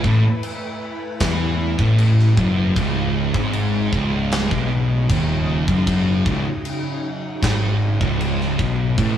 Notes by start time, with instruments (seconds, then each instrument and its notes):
Already playing: string machine A3 E4 B4
0.03 picked electric bass A1, distorted electric guitar A2, kick
0.43 crash
1.20 picked electric bass E2, distorted electric guitar E3, kick, snare, crash
1.79 picked electric bass A1, distorted electric guitar A2, kick
1.98 crash
2.19 snare
2.37 picked electric bass F#1, distorted electric guitar F#2, kick
2.75 picked electric bass C#1, distorted electric guitar C#2, string machine C#3 G#3 D#4, kick, crash
3.34 picked electric bass G#1, distorted electric guitar G#2, kick
3.53 crash
3.92 picked electric bass C#1, distorted electric guitar C#2, kick
4.32 snare, crash
4.50 picked electric bass B1, distorted electric guitar B2, kick
5.10 picked electric bass D#1, distorted electric guitar D#2, kick, crash
5.68 picked electric bass F#1, distorted electric guitar F#2, kick
5.86 string machine F#3, kick, crash
6.26 picked electric bass C#1, distorted electric guitar C#2, kick
6.65 crash
7.42 picked electric bass G#1, distorted electric guitar G#2, kick, snare, crash
8.01 picked electric bass C#1, distorted electric guitar C#2, kick
8.21 crash
8.41 snare
8.58 picked electric bass B1, distorted electric guitar B2, kick
8.98 picked electric bass A1, distorted electric guitar A2, string machine A3 E4 B4, kick, crash